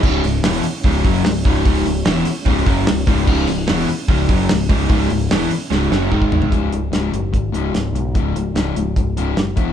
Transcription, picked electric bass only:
X:1
M:4/4
L:1/8
Q:1/4=148
K:C#m
V:1 name="Picked electric bass" clef=bass
C,,, C,,, E,,, z C,,, F,,, C,,, C,,, | C,,, C,,, E,,, z C,,, F,,, C,,, C,,, | C,,, C,,, E,,, z C,,, F,,, C,,, C,,, | C,,, C,,, E,,, z C,,, F,,, G,,,2 |
C,,, C,,, C,,, F,,, G,,, C,,, C,,, B,,, | C,,, C,,, C,,, C,,, C,,, C,,, F,,, E,,, |]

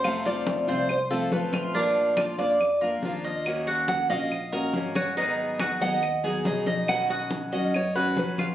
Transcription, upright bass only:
X:1
M:4/4
L:1/8
Q:1/4=140
K:Ebm
V:1 name="Upright bass" clef=bass
F,,3 =C,,3 B,,,2- | B,,,3 F,,3 E,,2- | E,,3 B,,,3 A,,,2- | A,,,3 E,,3 C,,2- |
C,,3 ^F,,3 B,,,2 |]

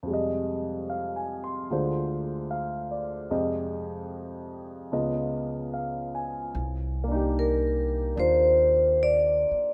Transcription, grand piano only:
X:1
M:4/4
L:1/16
Q:"Swing" 1/4=74
K:Cm
V:1 name="Grand piano"
z4 (3f2 a2 c'2 z4 f2 d2- | d z8 z3 f2 a2- | a z12 z3 |]
V:2 name="Grand piano"
[F,,C,G,A,e]8 [D,,D,A,Fc]8 | [F,,C,A,Ge]8 [_D,,_D,_CFe]8 | z2 [B,DEG]6 [DF]8 |]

